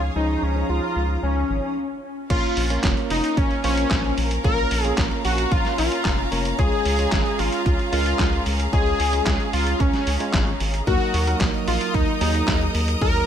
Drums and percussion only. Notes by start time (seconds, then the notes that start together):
2.30 kick, closed hi-hat, crash
2.44 closed hi-hat
2.57 open hi-hat
2.70 closed hi-hat
2.84 kick, snare, clap, closed hi-hat
2.97 closed hi-hat
3.10 open hi-hat
3.24 closed hi-hat
3.37 kick, closed hi-hat
3.51 closed hi-hat
3.64 open hi-hat
3.77 closed hi-hat
3.91 kick, snare, clap, closed hi-hat
4.04 closed hi-hat
4.18 open hi-hat
4.31 closed hi-hat
4.44 kick, closed hi-hat
4.58 closed hi-hat
4.71 open hi-hat
4.85 closed hi-hat
4.98 kick, snare, clap, closed hi-hat
5.11 closed hi-hat
5.25 open hi-hat
5.38 closed hi-hat
5.52 kick, closed hi-hat
5.65 snare, closed hi-hat
5.78 open hi-hat
5.92 closed hi-hat
6.05 kick, snare, clap, closed hi-hat
6.19 closed hi-hat
6.32 open hi-hat
6.45 closed hi-hat
6.59 kick, closed hi-hat
6.72 closed hi-hat
6.85 open hi-hat
6.99 closed hi-hat
7.12 kick, snare, clap, closed hi-hat
7.26 closed hi-hat
7.39 open hi-hat
7.53 closed hi-hat
7.66 kick, closed hi-hat
7.79 closed hi-hat
7.93 open hi-hat
8.06 closed hi-hat
8.19 kick, snare, clap, closed hi-hat
8.33 closed hi-hat
8.46 open hi-hat
8.60 closed hi-hat
8.73 kick, closed hi-hat
8.86 closed hi-hat
9.00 open hi-hat
9.13 closed hi-hat
9.27 kick, snare, clap, closed hi-hat
9.40 closed hi-hat
9.53 open hi-hat
9.67 closed hi-hat
9.80 kick, closed hi-hat
9.94 snare, closed hi-hat
10.07 open hi-hat
10.20 closed hi-hat
10.34 kick, snare, clap, closed hi-hat
10.47 closed hi-hat
10.60 open hi-hat
10.74 closed hi-hat
10.87 kick, closed hi-hat
11.01 closed hi-hat
11.14 open hi-hat
11.27 closed hi-hat
11.41 kick, snare, clap, closed hi-hat
11.54 closed hi-hat
11.68 open hi-hat
11.81 closed hi-hat
11.94 kick, closed hi-hat
12.08 closed hi-hat
12.21 open hi-hat
12.35 closed hi-hat
12.48 kick, snare, clap, closed hi-hat
12.61 closed hi-hat
12.75 open hi-hat
12.88 closed hi-hat
13.01 kick, closed hi-hat
13.15 closed hi-hat